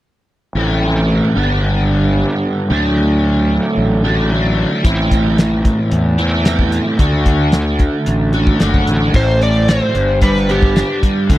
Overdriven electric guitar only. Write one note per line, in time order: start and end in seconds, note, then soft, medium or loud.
0.56 1.35 A2 medium
0.56 1.35 E3 medium
0.56 1.35 A3 medium
0.56 1.36 C4 medium
0.56 1.36 E4 medium
1.36 2.69 G2 medium
1.36 2.69 D3 medium
1.36 2.69 G3 medium
1.36 2.70 B3 medium
1.36 2.70 D4 medium
2.70 4.03 D3 medium
2.70 4.03 F#3 medium
2.70 4.04 A3 medium
2.70 4.03 D4 medium
4.04 4.30 D3 medium
4.04 4.30 F#3 medium
4.04 4.32 A3 medium
4.04 4.29 D4 medium
4.31 4.83 D3 medium
4.31 4.83 F#3 medium
4.31 4.85 A3 medium
4.31 4.84 D4 medium
4.84 6.17 A2 medium
4.84 6.17 E3 medium
4.84 6.19 A3 medium
4.84 6.18 C4 medium
4.84 6.17 E4 medium
6.18 6.44 A2 medium
6.18 6.45 E3 medium
6.18 6.47 A3 medium
6.18 6.44 C4 medium
6.18 6.44 E4 medium
6.46 6.98 A2 medium
6.46 6.98 E3 medium
6.46 6.98 A3 medium
6.46 6.99 C4 medium
6.46 6.99 E4 medium
6.99 8.32 D3 medium
6.99 8.32 A3 medium
6.99 8.33 D4 medium
6.99 8.32 F#4 medium
8.34 8.59 D3 medium
8.34 8.60 A3 medium
8.34 8.59 D4 medium
8.34 8.59 F#4 medium
8.60 9.12 D3 medium
8.60 9.13 A3 medium
8.60 9.13 D4 medium
8.60 9.14 F#4 medium
9.15 9.95 A2 medium
9.41 9.95 A3 medium
9.68 9.95 C4 medium
9.96 11.29 G2 medium
10.23 11.02 G3 medium
10.49 11.29 B3 medium
10.76 11.29 D4 medium
11.03 11.29 G3 medium
11.30 11.38 D3 medium